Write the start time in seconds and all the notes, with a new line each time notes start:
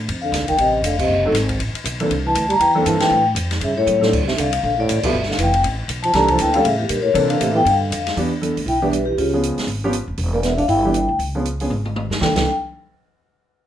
0.08 F2, ride
0.22 D3 F5
0.32 D2, snare, hi-hat pedal, ride
0.41 C2
0.48 A1 D#3 G5, kick, ride
0.57 A1 C3 D#5, ride
0.82 F1 D3 F5, hi-hat pedal, ride
0.99 C3 D#5, kick, crash
1.07 F#1
1.25 F#3 A3 C4 D#4 A4
1.32 G#1, snare, hi-hat pedal, ride
1.49 kick, ride
1.59 A1, ride
1.73 muted upright bass stroke, ride
1.84 B1, hi-hat pedal, ride
2.00 E3 A#3 C4 D4 A4, ride
2.10 C2, ride
2.25 E3 A5
2.35 D2, hi-hat pedal, ride
2.49 G3 A#5, ride
2.59 E2 E3 G5, ride
2.75 E3 A#3 C4 D4 A4
2.86 G2 E3 A5, hi-hat pedal, ride
3.00 E3 G5, snare, ride
3.10 A2
3.35 F2, hi-hat pedal, ride
3.51 snare, ride
3.60 G2 C#3 E5, ride
3.77 A2 C#5
3.86 A2, hi-hat pedal, high tom
4.00 A2 F3 A3 C4 D4 A4 D5, snare
4.13 D2, kick, crash
4.22 C2
4.27 A1 C3 E5, snare
4.37 C2 D3 F5, hi-hat pedal, ride
4.53 ride
4.63 A#1 D3 F5
4.78 A2 D5
4.89 A1, hi-hat pedal, ride
5.03 B2 F3 A3 B3 E4 G4 E5, muted upright bass stroke, kick, crash
5.13 G1
5.23 snare
5.28 D3 F5, snare
5.38 F1 E3, hi-hat pedal, ride
5.43 G5
5.54 ride
5.63 A1, ride
5.88 B1, hi-hat pedal, ride
6.03 F3 A5, ride
6.13 C2 E3 G3 A#3 C4 D4 A4 A#5, snare, ride
6.28 F3 A5, kick, ride
6.39 D2 E3 G5, hi-hat pedal, ride
6.54 D3 G3 A#3 C#4 E4 A4 F5, ride
6.64 A2 C#3 E5, ride
6.79 E2 G4
6.89 G2 A#2 A#4, hi-hat pedal, ride
7.02 A2 C#5
7.14 A#2 C3 E3 A#3 C4 D4 A4 D5, ride
7.30 D3 F5, ride
7.40 A2 C3 E5, hi-hat pedal, ride
7.53 E3 F3 A3 B3 E4 G4 G5
7.65 G2 D3 F5, ride
7.90 F2, hi-hat pedal, ride
8.07 snare, ride
8.16 E2 E3 B3 D4 G4, open hi-hat
8.41 E3 B3 D4 A4, closed hi-hat
8.57 D2, open hi-hat
8.66 B1 E4 G5, open hi-hat
8.82 E3 B3 D4 G4 E5
8.91 G3 B4, closed hi-hat
9.06 E3 G4
9.18 C#2 C#3 F4, open hi-hat
9.33 F3 B3 C#4 G#4
9.43 closed hi-hat
9.57 muted upright bass stroke, snare, open hi-hat
9.67 G#1, open hi-hat
9.84 F3 B3 C#4 G4
9.93 closed hi-hat
10.08 F1
10.17 E1, open hi-hat
10.33 A#3 D5
10.43 B3 E5, snare, closed hi-hat
10.57 D4 F5, kick, open hi-hat
10.68 G1 E4 G5, open hi-hat
10.85 E3 B3 D4 G4
10.94 closed hi-hat
11.09 D2
11.19 C#2, open hi-hat
11.35 F3 B3 C#4 G#4
11.45 closed hi-hat
11.60 F3 B3 C#4 G#4, open hi-hat
11.70 G#1, mid tom
11.85 mid tom
11.96 mid tom
12.10 G2, snare
12.21 C2 E3 A#3 D4 A4 G5, kick, snare
12.35 C2 E3 A#3 D4 A4 G5, kick, snare, crash